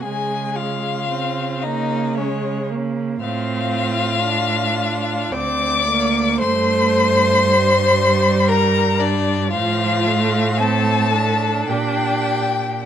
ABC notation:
X:1
M:3/4
L:1/8
Q:1/4=56
K:Db
V:1 name="Violin"
a f2 e d z | [K:F] f4 d'2 | c'4 b d | f2 a2 g2 |]
V:2 name="Violin"
A F2 E D z | [K:F] F4 d2 | c4 B D | F2 A2 G2 |]
V:3 name="Viola"
A,2 C B, A, B, | [K:F] C2 D2 C B, | A,2 G,4 | F, A, C D3 |]
V:4 name="Cello" clef=bass
D,6 | [K:F] A,,4 D,,2 | G,,6 | A,,4 B,,2 |]